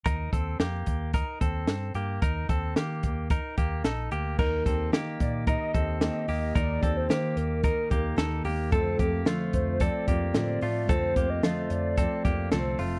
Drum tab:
CC |--------|--------|x-------|--------|
HH |xxxxxxxx|xxxxxxxx|-xxxxxxo|xxxxxxxo|
SD |--o---o-|--o---o-|--o---o-|--o---o-|
BD |oo-ooo--|oo-ooo--|oo-ooo--|oo--oo--|

CC |--------|--------|
HH |xxxxxxxo|xxxxxxxo|
SD |--o---o-|--o---o-|
BD |oo-ooo--|oo--oo--|